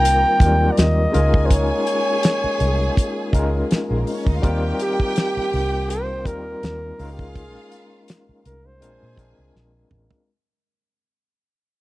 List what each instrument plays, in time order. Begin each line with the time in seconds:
Already playing: fingered electric bass C2, tonewheel organ D#3 A#3 C4 F4 G4, tine electric piano G3 C4 D#4 F4 A#4, violin section A#4 A#5, flugelhorn G5
0.05 closed hi-hat
0.39 fingered electric bass D#2, tine electric piano F#3 C4 D#4 F4 A#4, kick, closed hi-hat
0.46 tine electric piano G3
0.71 flugelhorn D5
0.77 fingered electric bass D#2, flugelhorn D#5, snare, closed hi-hat
1.12 fingered electric bass C#2, tine electric piano G#3 C#4 D#4 F4 A#4, tonewheel organ G#3 A#3 C#4 D#4, violin section G#4 G#5, closed hi-hat
1.34 kick
1.45 flugelhorn C5
1.50 flugelhorn C#5, kick, closed hi-hat
1.87 closed hi-hat
2.23 snare, closed hi-hat
2.44 muted fingered electric bass stroke
2.60 fingered electric bass C2, closed hi-hat
2.97 kick, closed hi-hat
3.33 fingered electric bass C#2, tine electric piano G#3 C#4 D#4 F4 A#4, kick, closed hi-hat
3.71 muted fingered electric bass stroke, snare, closed hi-hat
3.90 fingered electric bass A#1, violin section G#3 G#4
3.99 violin section A#3 A#4
4.06 violin section C4 C5, open hi-hat
4.15 violin section C#4 C#5
4.27 fingered electric bass D2, violin section D#4 D#5, kick
4.35 violin section F4 F5
4.42 fingered electric bass D#2, tonewheel organ D#3 C4 F4 G4, tine electric piano G3 C4 D#4 F4 A#4, violin section G4 G5, kick, closed hi-hat
4.79 flugelhorn G4, closed hi-hat
5.00 kick
5.16 snare, closed hi-hat
5.37 muted fingered electric bass stroke
5.53 fingered electric bass C2, open hi-hat
5.90 flugelhorn C5, closed hi-hat
6.25 fingered electric bass D#2, tine electric piano G3 C4 D#4 F4 A#4, flugelhorn A#4, kick, closed hi-hat
6.63 fingered electric bass D#2, snare, closed hi-hat
6.98 fingered electric bass C#2, tine electric piano G#3 C#4 D#4 F4 A#4, tonewheel organ G#3 C#4 D#4, violin section F4 F5, open hi-hat
7.12 flugelhorn G4
7.19 flugelhorn G#4, kick
7.36 kick, closed hi-hat
7.72 closed hi-hat
8.08 snare, closed hi-hat
8.29 muted fingered electric bass stroke
8.45 fingered electric bass C2, flugelhorn A#4, closed hi-hat
8.66 flugelhorn C5
8.80 fingered electric bass A#1, tine electric piano G#3 C4 D4 F4 A#4, tonewheel organ D4, violin section G#4 G#5, closed hi-hat
9.03 fingered electric bass A#2
9.16 fingered electric bass A#1, tine electric piano G#3 C4 D4 F4 A#4, kick, closed hi-hat
9.38 fingered electric bass C2
9.55 fingered electric bass A#1, snare
9.91 fingered electric bass A1, mid tom
10.11 floor tom